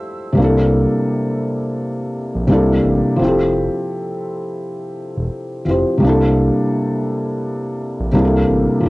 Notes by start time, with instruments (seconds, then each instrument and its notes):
Already playing: flute section C5 E5 A5 E6
0.33 felt piano C3 G3
0.37 analog synth bass C2, felt piano A#3 D4
0.42 felt piano E4 A4
2.35 analog synth bass A#1
2.47 analog synth bass C2, felt piano C3 G3 A#3 D4
2.52 felt piano E4 A4
2.85 analog synth bass A1
3.16 analog synth bass F1, felt piano F3 C4
3.22 felt piano E4 G4
3.28 felt piano A4
5.17 analog synth bass E1
5.65 analog synth bass F1, felt piano F3 C4 E4
5.69 felt piano G4 C5
5.97 felt piano C3 G3
6.02 analog synth bass C2, felt piano A#3 D4
6.07 felt piano E4 A4
8.00 analog synth bass A#1
8.13 analog synth bass C2, felt piano C3 G3 A#3 D4
8.17 felt piano E4 G#4
8.25 felt piano A4
8.50 analog synth bass A1
8.80 felt piano F3 C4
8.85 analog synth bass F1